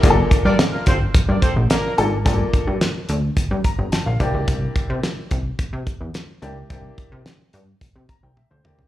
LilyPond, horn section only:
\new Staff \with { instrumentName = "Horn section" } { \time 4/4 \key g \dorian \tempo 4 = 108 r8. <d' bes' d''>16 r16 <bes d' f' bes'>16 <c' f' a' c''>16 r8 <d' bes' d''>16 <c' f' a' c''>16 r16 <bes d' f' bes'>8 r8 | r1 | r1 | r1 | }